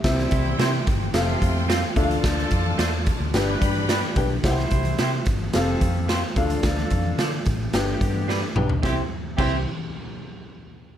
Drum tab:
CC |----------------|----------------|----------------|----------------|
HH |x-x-x-x-x-x-x-xx|x-x-x-x-x-x-x-x-|x-xxx-x-x-x-x-xx|x-x-x-x-x-x-----|
SD |oo--o---o---o---|oo--o---o---o---|oo--o---o---o---|oo--o---o---o---|
T2 |----------------|----------------|----------------|--------------o-|
FT |----------------|----------------|----------------|---------------o|
BD |o-o---o---o---o-|o-o---o---o---o-|o-o---o---o---o-|o-o---o---o-----|

CC |----x-----------|
HH |----------------|
SD |o---------------|
T2 |----------------|
FT |----------------|
BD |o---o-----------|